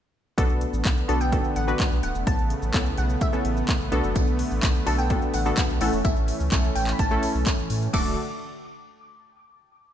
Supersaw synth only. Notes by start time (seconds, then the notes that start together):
0.38 D3 A3 B3
2.26 C#3 B3
3.92 D3
5.81 E3 C#4
7.94 D3 D4 F#4 A4